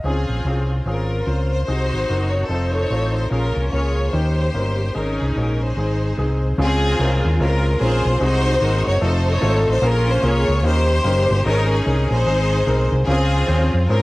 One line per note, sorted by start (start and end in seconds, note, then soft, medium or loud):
0.04 0.25 C#2 medium
0.04 0.67 C#3 medium
0.04 0.36 C4 medium
0.04 0.82 C4 medium
0.04 0.37 C#4 medium
0.04 0.11 D#4 soft
0.04 0.82 F4 medium
0.04 0.66 G#4 medium
0.04 0.37 G#4 medium
0.10 0.39 F4 medium
0.29 0.42 A#1 medium
0.45 0.79 C2 medium
0.45 0.77 C4 medium
0.45 0.78 C#4 medium
0.45 0.78 F4 medium
0.45 0.78 G#4 medium
0.85 1.20 G#1 medium
0.85 1.18 C4 medium
0.85 1.18 C#4 medium
0.85 1.64 F4 medium
0.85 1.18 F4 medium
0.85 1.19 G#4 medium
0.85 1.23 A#4 medium
1.25 1.62 C#2 medium
1.25 1.58 C4 medium
1.25 1.59 C#4 medium
1.25 1.59 F4 medium
1.25 1.59 A#4 medium
1.25 1.49 C5 medium
1.50 1.63 C5 medium
1.64 2.30 C3 medium
1.64 2.00 C4 medium
1.64 2.45 D#4 medium
1.64 2.00 D#4 medium
1.64 2.45 F#4 medium
1.64 2.00 F#4 medium
1.64 2.28 C5 loud
1.68 1.89 C2 medium
1.68 2.00 G#4 medium
1.93 2.06 G#1 medium
2.09 2.44 F#1 medium
2.09 2.41 C4 medium
2.09 2.41 D#4 medium
2.09 2.41 F#4 medium
2.09 2.41 A#4 medium
2.30 2.48 C#5 medium
2.45 2.84 F1 medium
2.45 2.82 C4 medium
2.45 3.27 D#4 medium
2.45 2.72 A4 medium
2.45 3.13 C5 medium
2.49 2.82 D#4 medium
2.49 2.82 F4 medium
2.49 2.82 A4 medium
2.70 3.27 A4 medium
2.70 3.14 C#5 loud
2.90 3.25 A1 medium
2.90 3.23 C4 medium
2.90 3.23 D#4 medium
2.90 3.23 F4 medium
2.90 3.24 A4 medium
3.14 3.31 C5 medium
3.30 3.53 A#1 medium
3.30 3.94 A#2 medium
3.30 3.63 A#3 medium
3.30 3.64 C#4 medium
3.30 4.10 C#4 medium
3.30 3.64 F4 medium
3.30 3.73 F4 medium
3.30 3.64 G#4 medium
3.30 3.69 A#4 medium
3.56 3.70 C2 medium
3.71 4.07 C#2 medium
3.71 4.05 A#3 medium
3.71 4.05 C#4 medium
3.71 4.05 F4 medium
3.71 4.11 F4 medium
3.71 4.11 G#4 medium
3.71 4.05 A#4 medium
3.71 4.10 C#5 medium
4.12 4.48 D#2 medium
4.12 4.76 D#3 medium
4.12 4.45 A#3 medium
4.12 4.45 C#4 medium
4.12 4.45 D#4 medium
4.12 4.46 G4 medium
4.12 4.91 G4 medium
4.12 4.95 C5 medium
4.54 4.89 G1 medium
4.54 4.86 A#3 medium
4.54 4.87 C#4 medium
4.54 4.87 D#4 medium
4.54 4.87 A#4 medium
4.94 5.17 G#1 medium
4.94 5.57 G#2 medium
4.94 5.27 G#3 medium
4.94 5.01 C4 soft
4.94 5.74 C#4 medium
4.94 5.27 D#4 medium
4.94 5.61 D#4 medium
4.94 5.27 G#4 medium
4.94 5.20 A#4 medium
4.99 5.30 C#4 medium
5.19 5.34 C2 medium
5.19 5.35 G#4 medium
5.36 5.71 A#1 medium
5.36 5.69 G#3 medium
5.36 5.69 C#4 medium
5.36 5.69 D#4 medium
5.36 5.43 F#4 medium
5.36 5.61 A#4 medium
5.43 5.72 G#4 medium
5.61 6.40 D#4 medium
5.61 6.40 G#4 soft
5.61 6.43 C5 medium
5.76 6.11 G#1 medium
5.76 6.40 G#2 soft
5.76 6.09 G#3 medium
5.76 6.10 C4 medium
5.76 6.10 D#4 medium
5.76 6.10 G#4 medium
6.17 6.53 C2 medium
6.17 6.50 G#3 medium
6.17 6.24 B3 medium
6.17 6.51 D#4 medium
6.17 6.50 G#4 medium
6.23 6.53 C4 medium
6.58 6.93 C#2 loud
6.58 7.20 C#3 medium
6.58 6.90 G#3 medium
6.58 6.91 C4 medium
6.58 7.37 C4 medium
6.58 6.90 C#4 medium
6.58 6.91 F4 medium
6.58 7.37 F4 medium
6.58 6.91 G#4 medium
6.58 7.22 G#4 loud
6.99 7.21 C2 medium
6.99 7.31 G#3 medium
6.99 7.32 C4 medium
6.99 7.31 C#4 medium
6.99 7.06 E4 medium
6.99 7.32 A#4 medium
7.05 7.34 F4 medium
7.25 7.38 D#2 loud
7.39 7.74 C#2 loud
7.39 7.72 G#3 medium
7.39 7.72 C4 medium
7.39 7.72 C#4 medium
7.39 7.72 F4 medium
7.39 7.79 F4 medium
7.39 7.72 A#4 medium
7.39 7.79 A#4 loud
7.79 8.02 A#1 loud
7.79 8.12 G#3 medium
7.79 8.12 C4 medium
7.79 8.12 C#4 medium
7.79 7.87 D#4 medium
7.79 8.18 F4 medium
7.79 8.18 G#4 medium
7.79 8.13 A#4 medium
7.79 8.22 C5 loud
7.85 8.15 F4 medium
8.05 8.19 B1 loud
8.20 8.55 C2 medium
8.20 8.82 C3 medium
8.20 8.52 G#3 medium
8.20 8.52 C4 medium
8.20 8.53 D#4 medium
8.20 8.99 D#4 loud
8.20 8.53 F#4 medium
8.20 8.99 F#4 medium
8.20 8.53 G#4 medium
8.24 8.84 C5 loud
8.61 8.83 G#1 loud
8.61 8.94 G#3 medium
8.61 8.68 A#3 medium
8.61 8.94 D#4 medium
8.61 8.94 F#4 medium
8.61 8.94 A#4 medium
8.67 8.96 C4 medium
8.87 9.00 F#1 medium
8.87 9.03 C#5 loud
9.01 9.36 F1 loud
9.01 9.34 A3 medium
9.01 9.33 C4 medium
9.01 9.34 D#4 medium
9.01 9.79 D#4 medium
9.01 9.34 F4 medium
9.01 9.34 A4 medium
9.01 9.26 A4 loud
9.01 9.68 C5 medium
9.27 9.79 A4 loud
9.27 9.68 C#5 loud
9.41 9.64 G#1 loud
9.41 9.74 A3 medium
9.41 9.74 C4 medium
9.41 9.74 D#4 medium
9.41 9.74 F4 medium
9.41 9.74 A4 medium
9.67 9.81 A1 medium
9.67 9.83 C5 loud
9.82 10.17 A#1 loud
9.82 10.45 A#2 medium
9.82 10.15 A#3 medium
9.82 10.15 C#4 medium
9.82 10.61 C#4 loud
9.82 10.15 F4 medium
9.82 10.23 F4 medium
9.82 10.15 G#4 medium
9.82 10.15 A#4 loud
9.82 10.09 A#4 loud
10.09 10.24 C5 loud
10.22 10.45 C2 medium
10.22 10.55 A#3 medium
10.22 10.55 C#4 medium
10.22 10.55 F4 medium
10.22 10.62 F4 medium
10.22 10.55 G#4 medium
10.22 10.62 G#4 medium
10.22 10.56 A#4 loud
10.22 10.65 C#5 loud
10.48 10.64 C#2 medium
10.63 10.98 D#2 loud
10.63 11.26 D#3 medium
10.63 10.96 A#3 medium
10.63 10.96 C#4 medium
10.63 10.96 D#4 medium
10.63 10.96 G4 medium
10.63 11.42 G4 medium
10.63 10.96 A#4 medium
10.63 11.41 C5 loud
11.04 11.26 F#1 loud
11.04 11.36 A#3 medium
11.04 11.37 C#4 medium
11.04 11.37 D#4 medium
11.04 11.37 G4 medium
11.04 11.37 A#4 medium
11.30 11.43 G1 loud
11.45 11.80 G#1 loud
11.45 12.07 G#2 medium
11.45 11.77 G#3 medium
11.45 11.77 C#4 medium
11.45 11.69 C#4 medium
11.45 11.69 D#4 medium
11.45 11.77 D#4 medium
11.45 11.78 G#4 medium
11.45 11.70 A#4 loud
11.45 11.52 C5 medium
11.52 11.80 C#5 medium
11.70 12.22 C#4 medium
11.70 12.09 D#4 medium
11.70 12.09 G#4 loud
11.85 12.07 C2 medium
11.85 12.17 G#3 medium
11.85 12.17 C#4 medium
11.85 12.18 D#4 medium
11.85 12.18 G#4 medium
11.85 12.18 A#4 medium
12.10 12.24 A#1 loud
12.10 12.87 D#4 medium
12.10 12.87 G#4 medium
12.10 12.92 C5 loud
12.26 12.60 G#1 loud
12.26 12.88 G#2 medium
12.26 12.58 G#3 medium
12.26 12.58 C4 medium
12.26 12.58 D#4 medium
12.26 12.58 G#4 medium
12.26 12.59 C5 medium
12.67 12.88 B1 medium
12.67 12.99 G#3 medium
12.67 12.99 C4 medium
12.67 12.99 D#4 medium
12.67 12.99 G#4 medium
12.67 12.99 A#4 loud
12.92 13.05 C2 loud
13.06 13.42 C#2 loud
13.06 13.68 C#3 medium
13.06 13.38 C4 medium
13.06 13.85 C4 medium
13.06 13.39 C#4 medium
13.06 13.39 F4 medium
13.06 13.85 F4 medium
13.06 13.39 G#4 medium
13.06 13.69 G#4 loud
13.06 13.13 A#4 medium
13.12 13.42 C5 medium
13.46 13.69 D#2 medium
13.46 13.79 C4 medium
13.46 13.79 C#4 medium
13.46 13.79 F4 medium
13.46 13.79 G#4 medium
13.46 13.79 C5 medium
13.74 13.86 F2 medium
13.89 14.02 G#2 loud
13.89 14.02 C4 medium
13.89 14.02 C#4 medium
13.89 14.02 F4 medium
13.89 14.02 G#4 medium
13.89 14.02 A#4 loud
13.89 14.02 C5 medium